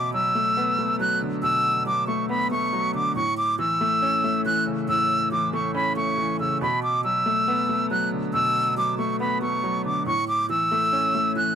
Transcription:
0.00 0.79 B2 loud
0.00 0.10 D6 medium
0.13 0.98 F#3 medium
0.13 0.96 E6 medium
0.35 0.77 A3 medium
0.57 1.65 B3 loud
0.79 1.86 A3 medium
1.00 1.85 F#3 medium
1.00 1.19 F#6 medium
1.22 2.30 D3 medium
1.43 2.51 B2 medium
1.43 1.84 E6 loud
1.86 2.71 F#3 medium
1.86 2.05 D6 medium
2.07 2.50 A3 medium
2.07 2.26 C#6 medium
2.29 3.16 B3 loud
2.29 2.48 B5 medium
2.51 3.16 A3 medium
2.51 2.92 C#6 medium
2.73 3.16 F#3 medium
2.94 3.16 D3 medium
2.94 3.13 D6 medium
3.16 4.24 A2 medium
3.16 3.34 C#6 medium
3.37 3.56 D6 medium
3.59 4.44 E3 medium
3.59 4.41 E6 loud
3.81 4.22 A3 loud
4.02 5.10 C#4 loud
4.24 5.32 A3 medium
4.45 5.31 E3 medium
4.45 4.64 F#6 medium
4.67 5.75 C#3 medium
4.88 5.96 A2 loud
4.88 5.29 E6 loud
5.32 6.16 E3 medium
5.32 5.50 D6 medium
5.53 5.95 A3 medium
5.53 5.72 C#6 medium
5.75 6.61 C#4 loud
5.75 5.93 B5 medium
5.97 6.61 A3 medium
5.97 6.37 C#6 medium
6.18 6.61 E3 medium
6.39 6.61 C#3 medium
6.39 6.58 E6 medium
6.61 7.69 B2 loud
6.61 6.80 B5 medium
6.83 7.01 D6 medium
7.04 7.89 F#3 medium
7.04 7.87 E6 medium
7.26 7.68 A3 medium
7.48 8.56 B3 loud
7.69 8.77 A3 medium
7.91 8.75 F#3 medium
7.91 8.09 F#6 medium
8.12 9.20 D3 medium
8.34 9.42 B2 medium
8.34 8.74 E6 loud
8.77 9.62 F#3 medium
8.77 8.95 D6 medium
8.98 9.41 A3 medium
8.98 9.16 C#6 medium
9.20 10.06 B3 medium
9.20 9.38 B5 medium
9.42 10.07 A3 medium
9.42 9.82 C#6 medium
9.63 10.07 F#3 medium
9.85 10.07 D3 medium
9.85 10.03 D6 medium
10.06 11.14 A2 medium
10.06 10.25 C#6 medium
10.28 10.46 D6 medium
10.49 11.34 E3 medium
10.49 11.32 E6 medium
10.72 11.13 A3 loud
10.93 11.55 C#4 medium
11.15 11.55 A3 medium
11.36 11.55 E3 medium
11.36 11.55 F#6 medium

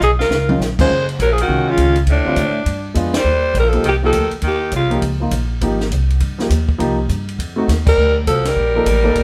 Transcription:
0.00 0.28 B1 loud
0.00 0.09 D#4 medium
0.00 0.11 G#4 loud
0.00 hi-hat pedal medium
0.19 0.57 F4 medium
0.19 0.58 A#4 medium
0.19 snare medium
0.29 0.58 C#2 medium
0.29 snare medium
0.49 0.59 D#3 medium
0.49 0.59 G#3 medium
0.49 0.59 C#4 medium
0.49 0.60 F4 medium
0.49 mid tom medium
0.59 0.88 A#1 medium
0.59 snare medium
0.59 hi-hat pedal medium
0.79 0.89 F#2 medium
0.79 0.89 D#3 medium
0.79 0.89 G#3 medium
0.79 1.08 G#3 medium
0.79 0.90 C#4 medium
0.79 0.89 F4 medium
0.79 1.07 C5 loud
0.79 kick medium
0.79 crash medium
0.89 1.18 F#1 medium
1.09 ride soft
1.19 1.48 A#1 loud
1.19 1.33 F#3 medium
1.19 1.34 A#4 loud
1.19 kick soft
1.19 hi-hat pedal medium
1.19 ride medium
1.32 1.40 F3 medium
1.32 1.41 G#4 medium
1.38 1.70 D#3 medium
1.38 ride medium
1.43 1.72 F#4 medium
1.48 1.77 C2 medium
1.48 1.93 D#3 medium
1.48 1.93 G#3 medium
1.48 1.93 C#4 medium
1.48 1.93 F4 medium
1.48 kick soft
1.69 1.98 C#3 medium
1.69 1.98 F4 loud
1.77 2.06 C#2 medium
1.77 kick soft
1.77 hi-hat pedal medium
1.77 ride medium
1.96 ride medium
2.07 2.24 D2 medium
2.07 2.64 A2 medium
2.07 kick soft
2.07 ride medium
2.12 2.94 D4 loud
2.25 2.36 D3 medium
2.25 2.36 G3 medium
2.25 2.36 C4 medium
2.25 2.37 F4 medium
2.36 2.65 A2 medium
2.36 kick soft
2.36 hi-hat pedal medium
2.36 ride medium
2.66 2.95 G2 medium
2.66 kick soft
2.66 ride medium
2.94 3.24 F2 medium
2.94 3.12 G#3 medium
2.94 3.13 B3 medium
2.94 3.13 D4 medium
2.94 3.13 F4 medium
2.94 kick soft
2.94 hi-hat pedal soft
2.94 ride medium
3.14 3.53 G3 medium
3.14 snare loud
3.14 ride medium
3.19 3.54 C5 loud
3.24 3.53 D#2 medium
3.54 3.82 A#1 loud
3.54 3.66 G3 medium
3.54 kick soft
3.54 hi-hat pedal medium
3.54 ride medium
3.59 3.70 A#4 medium
3.65 3.85 F3 medium
3.69 3.87 A4 medium
3.69 ride soft
3.73 3.83 F3 medium
3.73 3.83 A#3 medium
3.73 3.84 D#4 medium
3.73 3.84 G4 medium
3.83 4.12 C2 medium
3.83 3.94 D#3 medium
3.83 kick soft
3.83 ride medium
3.88 3.96 G4 loud
4.02 4.31 D#3 medium
4.02 4.13 F3 medium
4.02 4.13 A#3 medium
4.02 4.13 D#4 medium
4.02 4.14 G4 medium
4.02 4.32 A4 loud
4.13 4.31 D2 medium
4.13 kick soft
4.13 hi-hat pedal medium
4.13 ride medium
4.31 muted upright bass stroke soft
4.31 ride soft
4.42 4.71 D#2 medium
4.42 4.71 D#3 medium
4.42 kick soft
4.42 ride medium
4.47 4.73 G4 loud
4.71 5.01 C2 medium
4.71 5.01 C#3 medium
4.71 kick soft
4.71 hi-hat pedal medium
4.71 ride medium
4.76 5.02 F4 medium
4.90 5.01 F3 medium
4.90 5.01 A#3 medium
4.90 5.01 D#4 medium
4.90 5.02 G4 medium
4.90 ride soft
5.01 5.30 C#2 medium
5.01 kick soft
5.01 ride medium
5.20 5.31 F3 medium
5.20 5.31 A#3 medium
5.20 5.31 D#4 medium
5.20 5.32 F4 medium
5.31 5.60 A#1 medium
5.31 kick soft
5.31 hi-hat pedal medium
5.31 ride medium
5.61 5.90 G#1 medium
5.61 5.78 F3 medium
5.61 5.79 A#3 medium
5.61 5.79 D#4 medium
5.61 5.79 G4 medium
5.61 kick soft
5.61 ride medium
5.80 snare soft
5.90 6.19 C2 medium
5.90 kick soft
5.90 hi-hat pedal medium
5.90 ride medium
6.10 ride soft
6.20 6.49 G2 medium
6.20 kick soft
6.20 ride medium
6.38 6.49 F3 medium
6.38 6.49 A#3 medium
6.38 6.49 D#4 medium
6.38 6.50 G4 medium
6.38 snare soft
6.50 6.79 D#2 loud
6.50 kick soft
6.50 hi-hat pedal medium
6.50 ride medium
6.69 kick medium
6.78 7.08 C2 medium
6.78 6.96 F3 medium
6.78 6.96 A#3 medium
6.78 6.97 D#4 medium
6.78 6.97 G4 medium
6.78 kick soft
6.78 ride medium
7.09 7.38 G2 medium
7.09 kick soft
7.09 hi-hat pedal medium
7.09 ride medium
7.29 ride soft
7.38 7.67 F2 medium
7.38 kick soft
7.38 ride medium
7.56 7.67 A3 medium
7.56 7.67 C4 medium
7.56 7.67 D#4 medium
7.56 7.67 F#4 medium
7.68 7.96 D#2 medium
7.68 kick soft
7.68 snare soft
7.68 hi-hat pedal medium
7.68 ride medium
7.86 8.14 G3 medium
7.86 8.15 A#4 loud
7.86 kick medium
7.86 crash medium
7.97 8.26 D2 medium
8.27 8.55 C2 medium
8.27 8.49 F3 medium
8.27 8.49 A4 loud
8.27 kick soft
8.27 hi-hat pedal medium
8.27 ride medium
8.45 9.23 G3 medium
8.45 9.23 A#4 loud
8.45 snare soft
8.45 ride medium
8.56 8.85 A#1 medium
8.56 kick soft
8.75 8.85 F3 medium
8.75 8.85 A#3 medium
8.75 8.86 D#4 medium
8.75 8.86 A4 medium
8.86 9.15 A1 medium
8.86 kick soft
8.86 hi-hat pedal medium
8.86 ride medium
9.04 9.14 A#3 medium
9.04 9.14 D#4 medium
9.04 9.15 A4 medium
9.04 9.15 D5 medium
9.15 9.23 A#1 medium
9.15 kick soft
9.15 ride medium

